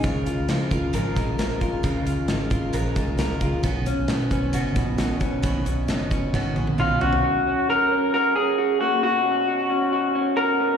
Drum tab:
HH |x-x-x-x-x-x-x-x-|x-x-x-x-x-x-x-x-|x-x-x-x-x-x-x-x-|x-x-x-x---------|
SD |----o-----o-o---|----o-----o-o---|----o-------o---|----o---o-------|
T1 |----------------|----------------|----------------|----------oo----|
T2 |----------------|----------------|----------------|------------o---|
FT |----------------|----------------|----------------|--------------oo|
BD |o-----o---o---o-|o-----o---o---o-|o-----o---o---o-|o-----o-o-------|

HH |----------------|----------------|
SD |----------------|----------------|
T1 |----------------|----------------|
T2 |----------------|----------------|
FT |----------------|----------------|
BD |----------------|----------------|